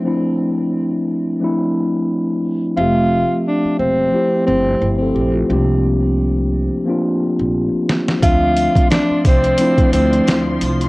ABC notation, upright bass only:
X:1
M:4/4
L:1/16
Q:"Swing 16ths" 1/4=88
K:Dm
V:1 name="Upright bass" clef=bass
z16 | F,,,3 z3 E,,,2 z2 G,,,2 G,,,2 B,,,2 | C,,6- C,, z4 B,,,2 z3 | D,,3 z3 C,,2 z2 D,,2 D,,2 C,,2 |]